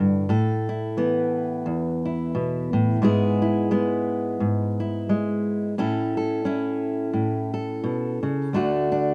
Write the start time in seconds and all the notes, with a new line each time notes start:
Already playing: A2 D3 A3 D4 F#4
0.00 G2
0.29 A2 A4
0.69 E4
0.97 E3 B3
1.66 E2
2.05 E4
2.35 B2
2.73 A2
3.02 G#2 G#3 B3 E4 G#4
3.42 E4
3.71 G#3 B3
4.40 G#2
4.80 E4
5.09 G#3
5.78 A2 C#4 E4 A4
6.17 A4
6.45 C#4 E4
7.13 A2
7.54 A4
7.84 B2
8.23 C#3
8.53 D2 D3 A3 D4 F#4
8.92 D4